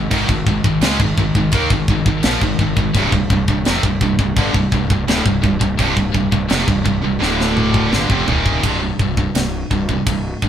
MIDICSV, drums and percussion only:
0, 0, Header, 1, 2, 480
1, 0, Start_track
1, 0, Key_signature, -3, "minor"
1, 0, Tempo, 710900
1, 76, Time_signature, 4, 2, 24, 8
1, 7081, End_track
2, 0, Start_track
2, 0, Title_t, "Drums"
2, 75, Note_on_c, 9, 49, 64
2, 76, Note_on_c, 9, 36, 98
2, 143, Note_off_c, 9, 36, 0
2, 143, Note_off_c, 9, 49, 0
2, 195, Note_on_c, 9, 36, 98
2, 262, Note_off_c, 9, 36, 0
2, 315, Note_on_c, 9, 36, 95
2, 382, Note_off_c, 9, 36, 0
2, 434, Note_on_c, 9, 36, 100
2, 502, Note_off_c, 9, 36, 0
2, 550, Note_on_c, 9, 49, 70
2, 558, Note_on_c, 9, 38, 117
2, 617, Note_off_c, 9, 49, 0
2, 625, Note_off_c, 9, 38, 0
2, 673, Note_on_c, 9, 36, 93
2, 741, Note_off_c, 9, 36, 0
2, 794, Note_on_c, 9, 36, 90
2, 861, Note_off_c, 9, 36, 0
2, 912, Note_on_c, 9, 36, 86
2, 979, Note_off_c, 9, 36, 0
2, 1023, Note_on_c, 9, 49, 60
2, 1032, Note_on_c, 9, 36, 111
2, 1091, Note_off_c, 9, 49, 0
2, 1099, Note_off_c, 9, 36, 0
2, 1150, Note_on_c, 9, 36, 103
2, 1218, Note_off_c, 9, 36, 0
2, 1270, Note_on_c, 9, 36, 98
2, 1338, Note_off_c, 9, 36, 0
2, 1390, Note_on_c, 9, 36, 91
2, 1458, Note_off_c, 9, 36, 0
2, 1504, Note_on_c, 9, 49, 66
2, 1512, Note_on_c, 9, 38, 112
2, 1572, Note_off_c, 9, 49, 0
2, 1580, Note_off_c, 9, 38, 0
2, 1630, Note_on_c, 9, 36, 92
2, 1698, Note_off_c, 9, 36, 0
2, 1749, Note_on_c, 9, 36, 86
2, 1817, Note_off_c, 9, 36, 0
2, 1868, Note_on_c, 9, 36, 92
2, 1936, Note_off_c, 9, 36, 0
2, 1987, Note_on_c, 9, 49, 58
2, 1989, Note_on_c, 9, 36, 101
2, 2054, Note_off_c, 9, 49, 0
2, 2057, Note_off_c, 9, 36, 0
2, 2109, Note_on_c, 9, 36, 94
2, 2176, Note_off_c, 9, 36, 0
2, 2229, Note_on_c, 9, 36, 92
2, 2297, Note_off_c, 9, 36, 0
2, 2350, Note_on_c, 9, 36, 99
2, 2418, Note_off_c, 9, 36, 0
2, 2466, Note_on_c, 9, 49, 65
2, 2474, Note_on_c, 9, 38, 124
2, 2533, Note_off_c, 9, 49, 0
2, 2541, Note_off_c, 9, 38, 0
2, 2588, Note_on_c, 9, 36, 94
2, 2656, Note_off_c, 9, 36, 0
2, 2708, Note_on_c, 9, 36, 93
2, 2775, Note_off_c, 9, 36, 0
2, 2828, Note_on_c, 9, 36, 88
2, 2895, Note_off_c, 9, 36, 0
2, 2946, Note_on_c, 9, 49, 58
2, 2948, Note_on_c, 9, 36, 106
2, 3014, Note_off_c, 9, 49, 0
2, 3015, Note_off_c, 9, 36, 0
2, 3068, Note_on_c, 9, 36, 96
2, 3136, Note_off_c, 9, 36, 0
2, 3188, Note_on_c, 9, 36, 93
2, 3255, Note_off_c, 9, 36, 0
2, 3309, Note_on_c, 9, 36, 96
2, 3377, Note_off_c, 9, 36, 0
2, 3431, Note_on_c, 9, 49, 66
2, 3439, Note_on_c, 9, 38, 118
2, 3498, Note_off_c, 9, 49, 0
2, 3506, Note_off_c, 9, 38, 0
2, 3549, Note_on_c, 9, 36, 91
2, 3617, Note_off_c, 9, 36, 0
2, 3670, Note_on_c, 9, 36, 90
2, 3738, Note_off_c, 9, 36, 0
2, 3788, Note_on_c, 9, 36, 98
2, 3856, Note_off_c, 9, 36, 0
2, 3909, Note_on_c, 9, 36, 98
2, 3914, Note_on_c, 9, 49, 59
2, 3976, Note_off_c, 9, 36, 0
2, 3981, Note_off_c, 9, 49, 0
2, 4029, Note_on_c, 9, 36, 92
2, 4097, Note_off_c, 9, 36, 0
2, 4149, Note_on_c, 9, 36, 92
2, 4216, Note_off_c, 9, 36, 0
2, 4269, Note_on_c, 9, 36, 100
2, 4336, Note_off_c, 9, 36, 0
2, 4386, Note_on_c, 9, 49, 65
2, 4394, Note_on_c, 9, 38, 119
2, 4454, Note_off_c, 9, 49, 0
2, 4462, Note_off_c, 9, 38, 0
2, 4509, Note_on_c, 9, 36, 97
2, 4577, Note_off_c, 9, 36, 0
2, 4629, Note_on_c, 9, 36, 84
2, 4697, Note_off_c, 9, 36, 0
2, 4878, Note_on_c, 9, 38, 66
2, 4946, Note_off_c, 9, 38, 0
2, 4999, Note_on_c, 9, 38, 61
2, 5067, Note_off_c, 9, 38, 0
2, 5110, Note_on_c, 9, 47, 82
2, 5177, Note_off_c, 9, 47, 0
2, 5228, Note_on_c, 9, 36, 72
2, 5295, Note_off_c, 9, 36, 0
2, 5353, Note_on_c, 9, 38, 91
2, 5420, Note_off_c, 9, 38, 0
2, 5468, Note_on_c, 9, 36, 79
2, 5535, Note_off_c, 9, 36, 0
2, 5590, Note_on_c, 9, 43, 95
2, 5657, Note_off_c, 9, 43, 0
2, 5710, Note_on_c, 9, 36, 91
2, 5777, Note_off_c, 9, 36, 0
2, 5830, Note_on_c, 9, 36, 99
2, 5830, Note_on_c, 9, 53, 60
2, 5898, Note_off_c, 9, 36, 0
2, 5898, Note_off_c, 9, 53, 0
2, 6073, Note_on_c, 9, 36, 82
2, 6140, Note_off_c, 9, 36, 0
2, 6193, Note_on_c, 9, 36, 83
2, 6261, Note_off_c, 9, 36, 0
2, 6314, Note_on_c, 9, 53, 66
2, 6322, Note_on_c, 9, 38, 107
2, 6381, Note_off_c, 9, 53, 0
2, 6389, Note_off_c, 9, 38, 0
2, 6556, Note_on_c, 9, 36, 72
2, 6623, Note_off_c, 9, 36, 0
2, 6677, Note_on_c, 9, 36, 74
2, 6744, Note_off_c, 9, 36, 0
2, 6796, Note_on_c, 9, 53, 59
2, 6797, Note_on_c, 9, 36, 106
2, 6864, Note_off_c, 9, 36, 0
2, 6864, Note_off_c, 9, 53, 0
2, 7038, Note_on_c, 9, 36, 83
2, 7081, Note_off_c, 9, 36, 0
2, 7081, End_track
0, 0, End_of_file